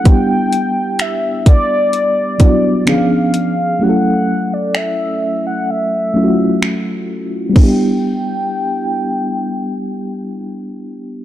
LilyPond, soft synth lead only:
\new Staff \with { instrumentName = "Soft synth lead" } { \time 4/4 \key e \dorian \tempo 4 = 64 g''4 e''8 d''4. eis''4 | fis''8. d''16 e''8. fis''16 e''4. r8 | g''1 | }